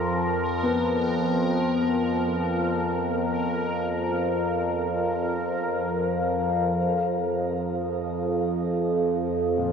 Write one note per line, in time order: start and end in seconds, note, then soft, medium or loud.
0.00 6.76 F2 medium
0.00 6.76 F3 medium
0.00 6.80 A#4 medium
0.63 7.55 B3 medium
6.77 9.72 F2 medium
6.77 9.72 F3 medium
6.77 9.72 D#5 medium
9.58 9.72 A#2 medium